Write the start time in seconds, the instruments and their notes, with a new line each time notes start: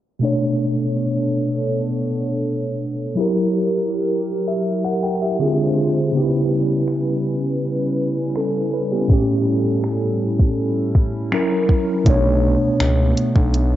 0.19 tine electric piano B2 A3 D4, analog synth pad B3 D4 A4 C#5
0.24 tine electric piano C#5
3.15 tine electric piano F#3 E4 G4, analog synth pad F#3 E4 G4 A#4
3.21 tine electric piano A#4
4.48 tine electric piano G4 E5
4.85 tine electric piano A#4 F#5
5.03 tine electric piano A#4 G5
5.22 tine electric piano G4 E5
5.39 tine electric piano D3 C4 F4 G#4, analog synth pad G#3 D4 F4 C5
6.12 tine electric piano C#3 B3 D#4, analog synth pad G3 C#4 E4 B4
6.17 tine electric piano G4
6.22 tine electric piano E4
6.88 finger snap
8.36 tine electric piano C#4 A4, finger snap
8.74 tine electric piano B4
8.92 tine electric piano B3 G4
9.08 tine electric piano A2 A3 C#4, analog synth pad A4, kick
9.13 tine electric piano G4
9.84 finger snap
10.39 kick
10.95 kick
11.32 tine electric piano F#3 C#4 E4 A#4, analog synth pad F#3 A#4, finger snap
11.69 kick
12.04 analog synth bass B1, tine electric piano B2 A3 D4, analog synth pad B2 A3 B3 D4, kick, closed hi-hat
12.10 tine electric piano C#5
12.80 analog synth bass C#2, finger snap, closed hi-hat
13.17 closed hi-hat
13.36 analog synth bass B1, kick
13.54 closed hi-hat